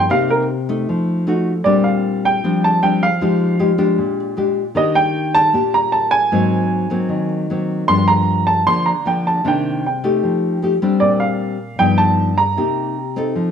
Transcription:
0.00 0.11 G5 medium
0.09 0.85 C3 medium
0.09 0.48 A#3 medium
0.09 0.48 D#4 medium
0.09 0.49 G4 medium
0.09 0.29 F5 medium
0.30 0.42 A#4 medium
0.69 1.24 A3 medium
0.69 1.24 D#4 medium
0.89 1.64 F3 medium
1.27 1.52 A3 medium
1.27 1.52 D#4 medium
1.27 1.52 F#4 medium
1.64 2.41 A#2 medium
1.64 2.40 G3 medium
1.64 2.40 C4 medium
1.64 2.40 D4 medium
1.64 1.85 D5 medium
1.84 2.24 F5 medium
2.25 2.64 G5 medium
2.44 3.19 F3 medium
2.44 2.79 G3 soft
2.44 2.80 C4 soft
2.44 2.80 D4 medium
2.64 2.82 A5 medium
2.82 3.07 G3 soft
2.82 3.07 C4 medium
2.82 3.08 D4 medium
2.82 3.02 G5 medium
3.03 4.15 F5 medium
3.21 3.97 F3 medium
3.21 3.57 G#3 medium
3.21 3.57 D#4 medium
3.21 3.57 G4 medium
3.59 3.71 G#3 medium
3.59 3.71 D#4 medium
3.59 3.71 G4 medium
3.78 4.34 G#3 medium
3.78 4.34 D4 medium
3.78 4.34 G4 medium
3.98 4.74 A#2 medium
4.37 4.62 G#3 medium
4.37 4.63 D4 soft
4.37 4.63 G4 medium
4.75 5.52 D#3 medium
4.75 5.51 A#3 medium
4.75 5.51 D4 medium
4.75 5.51 G4 medium
4.75 4.97 D#5 medium
4.95 5.36 G5 loud
5.35 5.71 A5 loud
5.53 6.30 A#2 medium
5.53 6.29 A#3 soft
5.53 6.29 D4 soft
5.53 6.29 G4 medium
5.74 5.94 A#5 medium
5.92 6.13 A5 medium
6.11 7.25 G#5 loud
6.32 7.08 G#2 medium
6.32 6.87 F#3 medium
6.32 6.88 A#3 medium
6.32 6.88 C4 medium
6.90 7.46 F#3 medium
6.90 7.46 A#3 medium
6.90 7.46 C4 medium
7.09 7.86 D#3 medium
7.50 7.86 F#3 soft
7.50 7.86 A#3 medium
7.50 7.86 C4 medium
7.88 8.64 G2 medium
7.88 8.63 F3 medium
7.88 8.63 A#3 medium
7.88 8.64 D4 medium
7.88 8.08 C6 loud
8.08 8.48 A#5 medium
8.47 8.67 A5 medium
8.66 9.42 D3 medium
8.66 8.92 F3 soft
8.66 8.92 A#3 soft
8.66 8.92 D4 medium
8.66 8.87 C6 medium
8.86 9.06 A#5 medium
9.05 9.41 F3 medium
9.05 9.41 A#3 soft
9.05 9.42 D4 medium
9.05 9.26 G5 medium
9.27 9.46 A5 medium
9.44 10.20 C3 medium
9.44 9.83 D#3 medium
9.44 9.83 A#3 medium
9.44 9.84 D4 medium
9.44 9.85 G5 medium
9.86 10.59 G5 medium
10.04 10.59 A3 medium
10.04 10.59 D#4 medium
10.04 10.59 G4 medium
10.23 10.82 F3 medium
10.62 10.73 A3 medium
10.62 10.74 D#4 soft
10.62 10.74 G4 medium
10.82 11.57 G3 medium
10.82 11.57 C4 medium
10.82 11.57 D4 medium
11.00 11.77 A#2 medium
11.00 11.20 D5 medium
11.20 11.80 F5 medium
11.79 12.55 G2 medium
11.79 12.31 F3 soft
11.79 12.31 B3 medium
11.79 12.32 D#4 medium
11.79 11.99 G5 medium
11.98 12.34 A5 medium
12.38 13.31 A#5 medium
12.57 13.33 C3 medium
12.57 12.96 A#3 medium
12.57 12.96 D#4 medium
12.57 12.96 G4 medium
13.16 13.51 C4 medium
13.16 13.51 D#4 medium
13.16 13.51 A4 medium
13.35 13.51 F3 medium

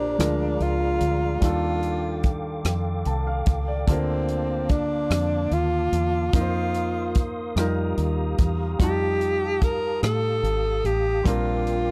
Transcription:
0.00 0.15 A#1 medium
0.00 0.15 A#2 soft
0.00 0.19 A#3 medium
0.00 0.18 D4 soft
0.00 0.64 D4 medium
0.00 0.18 G4 medium
0.00 0.19 G4 soft
0.00 0.18 C5 soft
0.00 0.20 C5 medium
0.00 0.18 D5 soft
0.00 1.40 A#5 medium
0.18 0.57 D2 medium
0.18 1.38 F3 soft
0.18 1.42 G#3 soft
0.18 1.40 D4 soft
0.18 1.41 F4 soft
0.18 1.41 G#4 medium
0.18 1.43 A#4 medium
0.18 1.41 F5 soft
0.18 cross-stick medium
0.18 closed hi-hat medium
0.60 0.98 C#2 medium
0.60 1.43 F4 medium
0.60 closed hi-hat soft
1.00 1.39 D2 medium
1.00 closed hi-hat soft
1.41 2.61 D#2 medium
1.41 2.61 D#3 medium
1.41 3.83 G3 soft
1.41 3.84 D4 medium
1.41 3.84 F4 soft
1.41 2.31 F4 medium
1.41 3.86 A4 medium
1.41 3.86 F5 medium
1.41 3.86 G5 medium
1.41 6.30 D6 medium
1.41 kick medium
1.41 closed hi-hat medium
1.45 3.85 A4 medium
1.83 closed hi-hat soft
2.23 kick medium
2.23 closed hi-hat soft
2.65 3.03 F2 medium
2.65 cross-stick medium
2.65 closed hi-hat medium
3.05 3.44 C2 medium
3.05 3.26 A5 medium
3.05 closed hi-hat soft
3.27 3.66 F5 medium
3.46 3.84 C#2 medium
3.46 kick medium
3.46 closed hi-hat soft
3.68 4.07 D5 medium
3.87 5.06 D2 medium
3.87 5.07 D3 medium
3.87 6.31 A#3 medium
3.87 6.30 D4 soft
3.87 6.30 F4 medium
3.87 6.29 A4 medium
3.87 11.21 F5 soft
3.87 6.31 A5 medium
3.87 kick loud
3.87 closed hi-hat medium
3.91 4.73 C4 medium
3.91 6.31 A#4 medium
4.28 closed hi-hat soft
4.69 5.55 D4 medium
4.69 kick medium
4.69 closed hi-hat soft
5.10 5.48 F2 medium
5.10 cross-stick medium
5.10 closed hi-hat medium
5.51 5.89 D#2 medium
5.51 6.34 F4 medium
5.51 closed hi-hat soft
5.92 6.30 E2 medium
5.92 closed hi-hat soft
6.33 7.52 F2 medium
6.33 7.56 A#3 medium
6.33 7.56 D#4 soft
6.33 7.56 F4 soft
6.33 7.23 F4 medium
6.33 7.55 A#4 medium
6.33 6.41 A#4 soft
6.33 7.55 C6 medium
6.33 11.21 D#6 medium
6.33 kick medium
6.33 closed hi-hat medium
6.41 7.60 C5 medium
6.74 closed hi-hat soft
7.15 kick medium
7.15 closed hi-hat soft
7.56 7.94 F2 medium
7.56 8.77 G3 medium
7.56 8.79 D#4 medium
7.56 8.80 F4 medium
7.56 11.22 G4 medium
7.56 8.81 A#4 medium
7.56 8.79 A#5 soft
7.56 cross-stick medium
7.56 closed hi-hat medium
7.97 8.35 D#2 medium
7.97 closed hi-hat soft
8.38 8.76 E2 medium
8.38 kick medium
8.38 closed hi-hat soft
8.79 9.99 F2 medium
8.79 11.21 G3 medium
8.79 11.22 D#4 soft
8.79 11.23 F4 soft
8.79 9.65 G4 medium
8.79 11.23 A5 soft
8.79 kick medium
8.79 closed hi-hat medium
8.83 11.24 A5 medium
9.21 closed hi-hat soft
9.61 10.02 A#4 medium
9.61 kick medium
9.61 closed hi-hat soft
10.03 10.40 A2 medium
10.03 10.87 A4 medium
10.03 cross-stick medium
10.03 closed hi-hat medium
10.43 10.81 G#1 medium
10.43 closed hi-hat soft
10.84 11.22 A1 medium
10.84 11.28 G4 medium
10.84 closed hi-hat soft
11.23 11.91 A#1 medium
11.23 11.91 A#2 medium
11.23 11.91 G3 medium
11.23 11.91 C4 medium
11.23 11.91 D4 soft
11.23 11.91 F4 medium
11.23 11.91 A#4 medium
11.23 11.91 G5 medium
11.23 11.91 C6 soft
11.23 11.91 D6 medium
11.23 kick medium
11.23 closed hi-hat medium
11.28 11.91 A#4 medium
11.67 closed hi-hat soft

